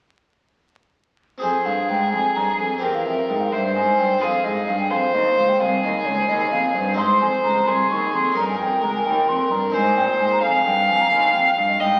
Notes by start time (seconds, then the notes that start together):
1.38 C4 G#4 C5
1.42 F2 G#4 G#5
1.65 G2 F5
1.89 G#2 G5
2.12 F2 G#5
2.35 G2 A#5
2.59 F2 G#5
2.78 C4 G4 A#4 G5
2.83 E2
2.94 F5
3.06 F2 E5
3.29 G#2 G5
3.41 F5
3.52 G2 C5 E5
3.75 G#2 G#5
3.99 G2 G5
4.18 C4 F4 G#4 F5
4.22 F2
4.44 G#2 D#5
4.68 G2 F5
4.80 G5
4.91 F2 C5 F5
5.14 D#2 D#5
5.37 C#2 F5
5.49 G5
5.60 C2 G#4 F5
5.83 D#2 D#5
6.05 C#2 C#5
6.18 C5
6.29 D#2 D#5
6.52 F2 F5
6.75 G2 C5
6.93 C4 D#4 G#4
6.98 G#2 C5 C6
7.21 F2 G#5
7.44 C#2 A#5
7.67 C2 G#4 C6
7.90 D#2 C#6
8.13 F2 C6
8.32 C#4 D#4 A#4
8.36 G2 A#4 A#5
8.49 G#5
8.59 F2 G5
8.82 C#2 A#5
8.95 G#5
9.05 D#2 G5
9.28 F2 C6
9.51 G2 A#5
9.70 G#2 C4 D#4 C5
9.74 G#2 C5 G#5
9.97 A#2 G5
10.20 G#2 G#5
10.32 A#5
10.42 F2 F5 G#5
10.65 G2 G5
10.88 F2 G#5
11.01 A#5
11.11 D#2 G#5
11.33 F2 G5
11.56 G2 F5
11.68 D#5
11.79 G#2 D#5 G5